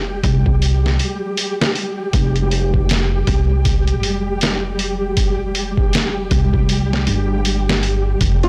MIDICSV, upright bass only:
0, 0, Header, 1, 2, 480
1, 0, Start_track
1, 0, Tempo, 759494
1, 1350, Time_signature, 4, 2, 24, 8
1, 5364, End_track
2, 0, Start_track
2, 0, Title_t, "Upright bass"
2, 0, Program_c, 0, 32
2, 0, Note_on_c, 0, 29, 79
2, 132, Note_off_c, 0, 29, 0
2, 149, Note_on_c, 0, 36, 91
2, 610, Note_off_c, 0, 36, 0
2, 1349, Note_on_c, 0, 29, 91
2, 2051, Note_off_c, 0, 29, 0
2, 2069, Note_on_c, 0, 36, 87
2, 2551, Note_off_c, 0, 36, 0
2, 2551, Note_on_c, 0, 29, 81
2, 3971, Note_off_c, 0, 29, 0
2, 3989, Note_on_c, 0, 36, 93
2, 4450, Note_off_c, 0, 36, 0
2, 4468, Note_on_c, 0, 31, 88
2, 5170, Note_off_c, 0, 31, 0
2, 5188, Note_on_c, 0, 29, 84
2, 5364, Note_off_c, 0, 29, 0
2, 5364, End_track
0, 0, End_of_file